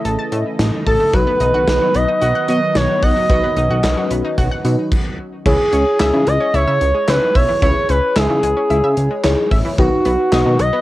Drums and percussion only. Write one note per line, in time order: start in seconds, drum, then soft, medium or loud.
0.05 closed hi-hat medium
0.32 closed hi-hat medium
0.59 snare loud
0.59 closed hi-hat medium
0.86 kick loud
0.86 open hi-hat medium
1.13 kick loud
1.13 closed hi-hat medium
1.40 closed hi-hat medium
1.67 snare loud
1.67 closed hi-hat medium
1.94 closed hi-hat medium
2.21 closed hi-hat medium
2.48 closed hi-hat medium
2.75 snare loud
2.75 closed hi-hat medium
3.03 kick loud
3.03 open hi-hat medium
3.30 kick loud
3.30 closed hi-hat medium
3.57 closed hi-hat medium
3.84 snare loud
3.84 clap loud
3.84 closed hi-hat medium
4.11 closed hi-hat medium
4.38 kick medium
4.38 closed hi-hat medium
4.65 closed hi-hat medium
4.92 kick loud
4.92 crash medium
5.46 kick loud
5.46 crash loud
5.73 closed hi-hat medium
6.00 snare loud
6.00 clap loud
6.00 closed hi-hat medium
6.27 closed hi-hat medium
6.54 closed hi-hat medium
6.81 closed hi-hat medium
7.08 snare loud
7.08 clap loud
7.08 closed hi-hat medium
7.35 kick loud
7.35 open hi-hat medium
7.62 kick loud
7.62 closed hi-hat medium
7.89 closed hi-hat medium
8.16 snare loud
8.16 clap loud
8.16 closed hi-hat medium
8.43 closed hi-hat medium
8.70 closed hi-hat medium
8.97 closed hi-hat medium
9.24 snare loud
9.24 clap loud
9.24 closed hi-hat medium
9.51 kick loud
9.51 open hi-hat medium
9.78 kick loud
9.78 closed hi-hat medium
10.05 closed hi-hat medium
10.32 snare loud
10.32 clap loud
10.32 closed hi-hat medium
10.59 closed hi-hat medium